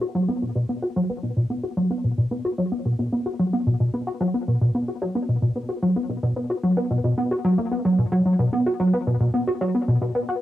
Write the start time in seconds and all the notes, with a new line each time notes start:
0.01 F#4
0.15 F#3
0.28 B3
0.42 B2
0.55 B2
0.69 B3
0.82 F#4
0.96 F#3
1.10 B3
1.23 B2
1.37 B2
1.50 B3
1.63 F#4
1.77 F#3
1.91 B3
2.04 B2
2.18 B2
2.31 B3
2.45 F#4
2.58 F#3
2.72 B3
2.85 B2
2.99 B2
3.12 B3
3.26 F#4
3.39 F#3
3.53 B3
3.66 B2
3.80 B2
3.93 B3
4.07 F#4
4.20 F#3
4.34 B3
4.48 B2
4.61 B2
4.74 B3
4.88 F#4
5.01 F#3
5.15 B3
5.28 B2
5.42 B2
5.55 B3
5.69 F#4
5.82 F#3
5.96 B3
6.09 B2
6.23 B2
6.36 B3
6.50 F#4
6.63 F#3
6.77 B3
6.91 B2
7.04 B2
7.18 B3
7.31 F#4
7.45 F#3
7.58 A#3
7.71 B3
7.85 F#3
7.98 B2
8.12 F#3
8.26 F#3
8.39 B2
8.53 B3
8.66 F#4
8.80 F#3
8.93 B3
9.07 B2
9.20 B2
9.34 B3
9.47 F#4
9.61 F#3
9.74 B3
9.88 B2
10.01 B2
10.15 B3
10.28 F#4